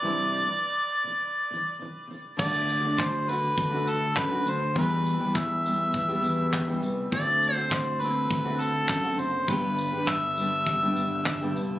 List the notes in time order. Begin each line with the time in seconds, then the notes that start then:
Already playing: D5
0.02 C3 E3 G3 D4 E4
0.45 C3 E3
1.04 C3 E3
1.50 C3 E3
1.79 C3 E3
2.07 C3 E3
2.37 D2 D3 A3 D4 F#4 D5, kick, crash
2.69 tambourine
2.81 A3 D4 F#4
2.98 C5, kick, clap
3.26 D3 A3 D4 F#4, tambourine
3.30 B4
3.57 D2, kick
3.71 D3 A3 D4 F#4
3.87 A4, tambourine
4.16 F#2 B4, kick, clap
4.31 D3 A3 D4 F#4
4.46 D2 C5, tambourine
4.73 E2 B2 E3 G3 B3 G4, kick
4.78 B4
5.06 tambourine
5.18 E2 E3 G3 B3 G4
5.35 E5, kick, clap
5.63 E3 G3 B3 G4, tambourine
5.94 kick
6.08 E2 B2 E3 G3 B3 G4
6.23 E2, tambourine
6.53 kick, clap
6.67 E2 B2 E3 G3 B3 G4
6.82 C2, tambourine
7.10 D2 D3 A3 C4 F#4 D5, kick
7.43 tambourine
7.55 A3 C4 F#4 C5
7.71 C5, kick, clap
8.00 D3 A3 C4 F#4 B4, tambourine
8.31 D2, kick
8.45 D3 A3 C4 F#4
8.60 A4, tambourine
8.89 F#2, kick, clap
9.03 D3 A3 C4 F#4
9.18 F#1 C5, tambourine
9.47 G1 G2 D3 G3 B3 D4 G4 B4, kick
9.78 tambourine
9.93 G1 G3 B3 D4 G4
10.07 E5, kick, clap
10.37 G3 B3 D4 G4, tambourine
10.67 kick
10.81 G2 D3 G3 B3 D4 G4
10.96 G1, tambourine
11.26 kick, clap
11.41 G2 D3 G3 B3 D4 G4
11.56 C2, tambourine